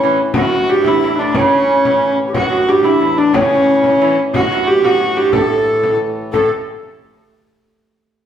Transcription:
Already playing: harmonium A2 E3, hurdy-gurdy C#4
0.02 lute E3, recorder E4
0.34 lute F#2, recorder F#4, frame drum
0.38 recorder E4, hurdy-gurdy F#4
0.47 recorder F#4
0.68 lute G2, recorder G4, hurdy-gurdy G4
0.82 lute E2, recorder E4, frame drum
0.88 hurdy-gurdy E4
0.99 recorder E4, hurdy-gurdy E4
1.04 lute E2
1.16 recorder D4, hurdy-gurdy D4
1.21 lute D2
1.34 recorder C#4, hurdy-gurdy C#4, frame drum
1.38 lute C#3
1.52 frame drum
1.85 frame drum
2.27 recorder G4
2.33 lute F#2, harmonium A2 E3, recorder F#4, hurdy-gurdy F#4, frame drum
2.50 lute F#2
2.66 lute G2, recorder G4, hurdy-gurdy G4
2.83 lute E2, hurdy-gurdy E4, recorder E4, frame drum
3.01 lute E2
3.17 recorder D4, hurdy-gurdy D4
3.33 lute C#3, hurdy-gurdy C#4, recorder C#4, frame drum
3.84 frame drum
4.00 lute E3, recorder E4
4.34 lute F#2, hurdy-gurdy F#4, recorder F#4, frame drum
4.52 lute F#2, recorder F#4
4.67 hurdy-gurdy G4, recorder G4
4.83 lute F#2, recorder F#4, hurdy-gurdy F#4, frame drum
5.01 recorder F#4
5.17 lute G2, hurdy-gurdy G4
5.33 lute A2, hurdy-gurdy A4, recorder A4, frame drum
5.42 recorder G4
5.47 recorder A4
5.84 frame drum
6.18 frame drum
6.32 lute A2, recorder A4, hurdy-gurdy A4, frame drum

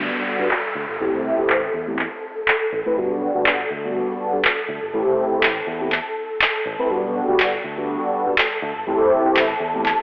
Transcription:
Already playing: analog polysynth G3 B3 D4 F#4, string machine A4 A5, downlifter
0.26 analog polysynth G3 B3 D4 F#4
0.40 fingered electric bass G2
0.51 clap
0.75 fingered electric bass D2
0.89 fingered electric bass G1
1.00 fingered electric bass A1, analog polysynth A3 C4 E4 G4
1.14 fingered electric bass C2
1.38 fingered electric bass G1, analog polysynth A3 C4 E4 G4
1.49 fingered electric bass A1, clap
1.74 fingered electric bass E2
1.87 analog polysynth A3 C4 E4 G4
1.99 clap
2.48 clap
2.72 fingered electric bass A1
2.85 analog polysynth A3 C4 E4 B4
2.97 fingered electric bass G1, analog polysynth G3 B3 D4 F#4
3.10 fingered electric bass B1
3.35 fingered electric bass D2, analog polysynth G3 B3 D4 F#4, shaker
3.46 fingered electric bass G1, clap
3.71 fingered electric bass D2
3.84 analog polysynth G3 B3 D4 F#4
4.19 analog polysynth G3 B3 D4 F#4
4.33 fingered electric bass G2, shaker
4.45 clap
4.69 fingered electric bass D2
4.82 fingered electric bass G1
4.93 fingered electric bass A1, analog polysynth A3 C4 E4 G4
5.07 fingered electric bass C2
5.31 fingered electric bass G1, analog polysynth A3 C4 E4 G4, shaker
5.42 fingered electric bass A1, clap
5.67 fingered electric bass E2
5.80 analog polysynth A3 C4 E4 G4
5.92 clap
6.41 clap
6.65 fingered electric bass A1
6.79 analog polysynth A3 C4 E4 B4
6.90 fingered electric bass G1, analog polysynth G3 B3 D4 F#4, string machine A4 A5
7.03 fingered electric bass B1
7.28 fingered electric bass D2, analog polysynth G3 B3 D4 F#4, shaker
7.39 fingered electric bass G1, clap
7.64 fingered electric bass D2
7.77 analog polysynth G3 B3 D4 F#4
8.02 shaker
8.13 analog polysynth G3 B3 D4 F#4
8.26 fingered electric bass G2, shaker
8.38 clap
8.62 fingered electric bass D2
8.76 fingered electric bass G1
8.87 fingered electric bass A1, analog polysynth A3 C4 E4 G4, shaker
9.00 fingered electric bass C2, shaker
9.24 fingered electric bass G1, analog polysynth A3 C4 E4 G4, shaker
9.36 fingered electric bass A1, clap
9.60 fingered electric bass E2
9.74 analog polysynth A3 C4 E4 G4
9.86 clap

